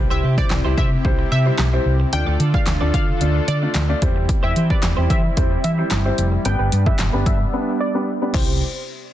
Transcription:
Already playing: C3 G3 C4 E4 G4 C5
0.10 C2 E4 G4 C5 E5
0.23 C3 E4 G4 C5
0.38 G3 C4 E4 C5 D5, kick
0.50 C2, muted clean electric guitar stroke, snare, clap
0.65 C2 G3 C4 E4 G4 C5
0.77 C3 E4 G4 C5 E5, kick
0.93 muted clean electric guitar stroke
1.04 C2 G3 C4 E4 C5, muted clean electric guitar stroke, kick
1.19 muted clean electric guitar stroke
1.32 C3 E5
1.46 G3 C4 E4 C5, muted clean electric guitar stroke
1.58 B1, muted clean electric guitar stroke, snare, clap
1.73 G3 C4 E4 C5, muted clean electric guitar stroke
1.86 C2
2.00 muted clean electric guitar stroke
2.12 D2 D3 A3 D4 F4 A4 D5 G5, muted clean electric guitar stroke, closed hi-hat
2.27 D2 F4 A4 D5
2.39 D3 F4 A4 D5, closed hi-hat
2.54 A3 D4 F4 D5 F5, kick
2.67 D2, muted clean electric guitar stroke, snare, clap, closed hi-hat
2.81 D2 A3 D4 F4 A4 D5
2.93 D3 F4 A4 D5 F5, kick, closed hi-hat
3.21 D2 A3 D4 F4 D5, muted clean electric guitar stroke, closed hi-hat
3.35 muted clean electric guitar stroke
3.48 D3 D5, closed hi-hat
3.62 A3 D4 F4 D5, muted clean electric guitar stroke
3.74 D2, muted clean electric guitar stroke, snare, clap, closed hi-hat
3.89 A3 D4 F4 D5, muted clean electric guitar stroke
4.02 E2 G3 C4 E4 C5, kick, closed hi-hat
4.16 muted clean electric guitar stroke
4.29 muted clean electric guitar stroke, kick, closed hi-hat
4.43 E2 E4 G4 C5 E5
4.55 E3 E4 G4 C5, closed hi-hat
4.70 G3 C4 E4 B4 D5, kick
4.83 E2, muted clean electric guitar stroke, snare, clap, closed hi-hat
4.97 E2 G3 C4 E4 G4 C5
5.09 E3 E4 G4 C5 E5, kick, closed hi-hat
5.24 muted clean electric guitar stroke
5.37 E2 G3 C4 E4 C5, muted clean electric guitar stroke, kick, closed hi-hat
5.51 muted clean electric guitar stroke
5.64 E3 E5, closed hi-hat
5.78 G3 C4 E4 C5, muted clean electric guitar stroke
5.91 G1, muted clean electric guitar stroke, snare, clap, closed hi-hat
6.05 G3 C4 E4 C5, muted clean electric guitar stroke
6.18 F1, closed hi-hat
6.32 muted clean electric guitar stroke
6.45 G1 G3 B3 D4 B4 G5, muted clean electric guitar stroke, closed hi-hat
6.59 G1 D4 G4 B4
6.72 G2 D4 G4 B4, closed hi-hat
6.86 G3 B3 D4 B4 E5, kick
6.99 G1, muted clean electric guitar stroke, snare, clap, closed hi-hat
7.13 G1 G3 B3 D4 G4 B4
7.26 G2 D4 G4 B4 E5, kick, closed hi-hat
7.40 muted clean electric guitar stroke
7.53 G3 B3 D4 B4
7.80 D5
7.94 G3 B3 D4 B4
8.22 G3 B3 D4 B4
8.34 C2 C3 C4 E4 G4 C5, kick, clap, crash

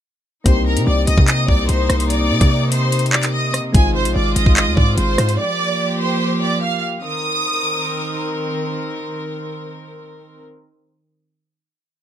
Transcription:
0.44 C2 C3 A#3 C4 D#4 G4 C5 C6, kick, closed hi-hat
0.66 A#4 A#5
0.77 C3, closed hi-hat
0.87 C2 D5 D6
1.07 C2 D#5 D#6, closed hi-hat
1.18 C3, kick
1.28 D#5 D#6, clap, closed hi-hat
1.48 C2 D5 D6, kick
1.69 C2 C5 C6, closed hi-hat
1.89 C2, cross-stick, closed hi-hat
2.00 closed hi-hat
2.10 D5 D6, closed hi-hat
2.31 C3
2.41 C3, kick, closed hi-hat
2.72 C5 C6, closed hi-hat
2.92 closed hi-hat
2.99 closed hi-hat
3.06 closed hi-hat
3.13 D5 D6, clap
3.23 clap, closed hi-hat
3.33 D#5 D#6
3.54 cross-stick, closed hi-hat
3.72 G#1 G#3 C4 D#4 F4 G#4 G#5, kick, closed hi-hat
3.95 C5 C6
4.05 A#1, closed hi-hat
4.16 G#1 D5 D6
4.36 G#1 D#5 D#6, closed hi-hat
4.46 G#1, kick
4.57 D#5 D#6, clap, closed hi-hat
4.67 D#2
4.77 G#2 D5 D6, kick
4.98 G#1 C5 C6, closed hi-hat
5.18 G#2, cross-stick, closed hi-hat
5.29 closed hi-hat
5.39 F3 A#3 G4 D5 D6
6.00 C5 C6
6.42 D5 D6
6.62 F5 F6
7.03 D#3 C4 A#4 D#6

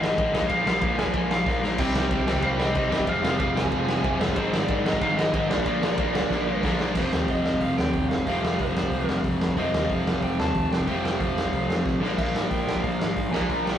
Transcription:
Already playing: G#1 C4
0.02 G#2 D#3 G#3 D#5, snare
0.18 A1 G#2 D#3 G#3, kick, ride
0.34 A#1 A#2 F3 A#3 D#5, snare
0.42 kick
0.48 A#1 A#2 F3 A#3 F5, kick, ride
0.65 A#1 A#2 F3 A#3 F5, snare
0.81 A#1 A#2 F3 A#3, kick, ride
0.98 A#1 A#2 F3 A#3 G#5, snare
1.06 kick
1.14 A#1 A#2 F3 A#3, kick, ride
1.30 A#2 F3 A#3 F5, snare
1.46 A#1 A#2 F3 A#3, kick, snare
1.63 A#1 A#2 F3 A#3, snare
1.78 C2 C3 D#3 G3 C4 G4 G5, kick, crash
1.94 C2 C3 D#3 G3 C4 G4, snare
2.09 C2 C3 D#3 G3 C4 G4, kick, ride
2.27 C2 C3 D#3 G3 C4 G4, snare
2.35 kick
2.42 C2 C3 D#3 G3 C4 G4 F5, kick, ride
2.58 C3 D#3 G3 C4 G4 D#5, snare
2.74 C2 C3 D#3 G3 C4 G4, kick, ride
2.90 G2 C3 D#3 G3 C4 G4 D#5, snare
2.99 kick
3.06 F1 F2 C3 F3 G#3 C4 F4 F5, kick, ride
3.23 F1 F2 C3 F3 G#3 C4 F4, snare
3.39 F1 F2 C3 F3 G#3 C4 F4 F5, kick, ride
3.55 F1 F2 C3 F3 G#3 C4 F4 G#5, snare
3.64 kick
3.71 F1 F2 C3 F3 G#3 C4 F4, kick, ride
3.88 F2 C3 F3 G#3 C4 F4, snare
4.03 F1 F2 C3 F3 G#3 C4 F4, kick, ride
4.20 F1 F2 C3 F3 G#3 C4 F4, snare
4.28 kick
4.36 G#1 G#2 D#3 G#3 C4 D#4 C5, kick, ride
4.53 G#1 G#2 D#3 G#3 C4 D#4, snare
4.60 D5
4.68 G#1 G#2 D#3 G#3 C4 D#4, kick, ride
4.85 G#1 G#2 D#3 G#3 C4 D#4 D#5, snare
4.93 kick
5.01 G#1 G#2 D#3 G#3 C4 D#4 F5, kick, ride
5.17 G#2 D#3 G#3 C4 D#4 D#5, snare
5.33 G#1 G#2 D#3 G#3 C4 D#4 D#5, kick, ride
5.49 A#1 A#2 D3 F3 A#3 D4 D5, snare
5.58 kick
5.65 A#1 A#2 D3 F3 A#3 D4, kick, ride
5.81 A#1 A#2 D3 F3 A#3 D4, snare
5.97 A#1 A#2 D3 F3 A#3 D4, kick, ride
6.13 A#1 A#2 D3 F3 A#3 D4, snare
6.22 kick
6.30 A#1 A#2 D3 F3 A#3 D4, kick, snare
6.47 A#2 D3 F3 A#3 D4
6.62 A#1 A#2 D3 F3 A#3 D4, kick, snare
6.79 A#1 A#2 D3 F3 A#3 D4, snare
6.95 F1 F2 C3 F3 A3 C4 F4 C5, kick, crash
7.13 D#2, snare
7.28 F1 D#5, kick, open hi-hat
7.45 F1, snare
7.53 kick
7.61 F1 F5, kick, open hi-hat
7.77 D#2 G5, snare
7.93 D#2, kick, open hi-hat
8.10 F1 F5, snare
8.18 kick
8.26 F1 F2 C3 F3 A3 C4 F4, kick, open hi-hat
8.43 F1 F5, snare
8.59 F1 C5, kick, open hi-hat
8.75 F1, snare
8.83 kick
8.92 C2, kick, open hi-hat
9.06 F1 A#4, snare
9.24 F1, kick, open hi-hat
9.40 F1, snare
9.49 kick
9.57 F1 F2 C3 F3 A3 C4 F4 D#5, kick, open hi-hat
9.73 D#2, snare
9.89 F1 F5, kick, open hi-hat
10.06 F1, snare
10.14 kick
10.22 F1 G5, kick, open hi-hat
10.39 D#2 A5, snare
10.55 D#2, kick, open hi-hat
10.72 F1 G5, snare
10.79 kick
10.86 F1 F2 C3 F3 A3 C4 F4, kick, open hi-hat
11.04 F1 G5, snare
11.20 F1 F5, kick, open hi-hat
11.37 F1, snare
11.45 kick
11.53 C2, kick, open hi-hat
11.69 F1, snare
11.85 A1, kick, snare
12.01 A#1 A#2 F3 A#3 D4, snare
12.18 A#1 F5, kick, crash
12.34 G#2, snare
12.50 A#1 G5, kick, open hi-hat
12.68 A#1, snare
12.76 kick
12.84 A#1 F5, kick, open hi-hat
13.00 G#1 F5, snare
13.16 G#2, kick, open hi-hat
13.32 A#1 A#2 F3 A#3 D4 G#5, snare
13.41 kick
13.49 A#1 A#5, kick, open hi-hat
13.65 A#1 G5, snare

